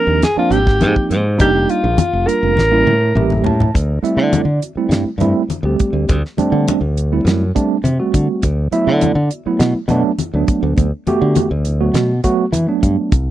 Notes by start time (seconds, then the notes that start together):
Already playing: F3 A#3 C4 D4 A#4
0.07 D#2
0.22 G#4, snare, closed hi-hat, muted conga, high conga
0.36 F3 A#3 C4 D4 F4, muted fingered electric bass stroke
0.50 G#1 G4, closed hi-hat, muted conga
0.67 C4 D#4, kick, snare
0.80 G#2 F3 A#3 C4 D#4, closed hi-hat, high conga
0.96 muted fingered electric bass stroke, kick
1.10 G#2, closed hi-hat
1.38 F1 G3 A#3 D4 D#4 G4, kick, closed hi-hat
1.54 G3 A#3 D4 D#4
1.69 F4, closed hi-hat
1.84 A#1
1.98 D4 D#4, closed hi-hat, muted conga, high conga, low conga
2.13 F1
2.27 G3 A#3 D4 F4 A#4, closed hi-hat
2.43 F1
2.57 A1, snare, muted conga, high conga
2.71 G3 A#3 C#4 E4
2.87 A2, high tom, muted conga
3.15 A1 G3 A#3 C#4 G4 E5, mid tom
3.30 mid tom, high conga
3.44 A2 A5, floor tom, low conga
3.60 floor tom, low conga
3.74 D2, kick, closed hi-hat, muted conga
4.02 G3 A3 C4 E4 E5, muted fingered electric bass stroke, closed hi-hat, muted conga
4.17 D3
4.33 D5, closed hi-hat, high conga
4.45 D3
4.62 C4 F#4, closed hi-hat, muted conga
4.75 G3 A3 C4 E4, muted fingered electric bass stroke
4.89 G2, snare, closed hi-hat
5.05 muted fingered electric bass stroke
5.18 G2 G3 A3 C4 E4, closed hi-hat, high conga
5.49 C4 E4, muted fingered electric bass stroke, closed hi-hat, high conga
5.63 D2 G3 A3 C4 G4
5.79 muted fingered electric bass stroke, kick, closed hi-hat
5.93 D2
6.09 D2, kick, closed hi-hat, muted conga
6.25 snare
6.37 G3 A3 C4 D4, muted fingered electric bass stroke, closed hi-hat, muted conga, high conga
6.52 D3
6.68 closed hi-hat, high conga
6.81 D2
6.97 C4 D4, closed hi-hat, muted conga
7.12 G3 A3 C4 E4
7.25 F#2, snare, closed hi-hat, muted conga
7.55 G3 A3 C4 D4, kick, closed hi-hat
7.84 C3 F#4, closed hi-hat, high conga
7.99 G3 A3 C4 F#4
8.14 D3, kick, closed hi-hat
8.42 D2, kick, closed hi-hat, muted conga
8.71 F#3 A3 B3 E4 E5, muted fingered electric bass stroke, closed hi-hat, muted conga
8.87 D3
8.97 C#5
9.01 D5, closed hi-hat, high conga
9.15 D3
9.31 B3 F#4, closed hi-hat
9.46 F#3 A3 B3 E4, muted fingered electric bass stroke
9.59 B2, snare, closed hi-hat, muted conga
9.74 muted fingered electric bass stroke
9.88 B2 F#3 A3 B3 D4, closed hi-hat, high conga
10.18 B3 E4, muted fingered electric bass stroke, closed hi-hat, high conga
10.34 D2 F#3 A3 B3 D4
10.48 muted fingered electric bass stroke, kick, closed hi-hat
10.63 D2
10.77 D2, kick, closed hi-hat, muted conga
11.06 A3 B3 F#4 G4, muted fingered electric bass stroke, closed hi-hat, muted conga, high conga
11.22 D3
11.35 closed hi-hat, high conga
11.51 D2
11.65 B3 E4, closed hi-hat, muted conga
11.80 F#3 A3 B3 F#4
11.94 B2, snare, closed hi-hat, muted conga
12.24 F#3 A3 B3 F#4, kick, closed hi-hat
12.52 E3 D4, closed hi-hat, high conga
12.67 F#3 A3 B3 D4
12.83 G2, kick, closed hi-hat
13.12 C2, kick, closed hi-hat, muted conga